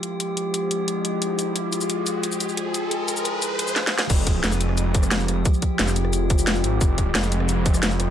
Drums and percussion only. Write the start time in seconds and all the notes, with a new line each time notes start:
0.03 closed hi-hat
0.20 closed hi-hat
0.37 closed hi-hat
0.54 closed hi-hat
0.71 closed hi-hat
0.88 closed hi-hat
1.05 closed hi-hat
1.22 closed hi-hat
1.39 closed hi-hat, shaker
1.56 closed hi-hat
1.73 closed hi-hat, shaker
1.81 shaker
1.90 closed hi-hat, shaker
2.06 closed hi-hat, shaker
2.23 closed hi-hat, shaker
2.32 shaker
2.40 closed hi-hat, shaker
2.49 shaker
2.57 closed hi-hat
2.74 closed hi-hat, shaker
2.91 closed hi-hat
3.08 closed hi-hat, shaker
3.17 shaker
3.25 closed hi-hat, shaker
3.42 closed hi-hat, shaker
3.59 closed hi-hat, shaker
3.67 shaker
3.76 snare
3.87 snare
3.99 snare
4.10 kick, closed hi-hat, crash, shaker
4.27 kick, closed hi-hat
4.44 snare, closed hi-hat, shaker
4.52 cross-stick, shaker
4.61 closed hi-hat, shaker
4.69 cross-stick
4.78 closed hi-hat, shaker
4.94 kick, closed hi-hat, shaker
5.03 cross-stick, shaker
5.11 snare, closed hi-hat, shaker
5.20 shaker
5.28 cross-stick, closed hi-hat
5.45 kick, closed hi-hat, shaker
5.54 shaker
5.62 kick, closed hi-hat
5.79 snare, closed hi-hat, shaker
5.88 cross-stick, snare, shaker
5.96 closed hi-hat, shaker
6.05 cross-stick
6.13 closed hi-hat, shaker
6.30 kick, closed hi-hat, shaker
6.39 shaker
6.47 snare, closed hi-hat, shaker
6.56 shaker
6.64 closed hi-hat
6.81 kick, closed hi-hat, shaker
6.98 kick, closed hi-hat
7.15 snare, closed hi-hat, shaker
7.23 cross-stick, shaker
7.32 closed hi-hat, shaker
7.40 cross-stick
7.49 closed hi-hat, shaker
7.66 kick, closed hi-hat, shaker
7.74 cross-stick, shaker
7.83 snare, closed hi-hat, shaker
7.91 shaker
8.00 cross-stick, closed hi-hat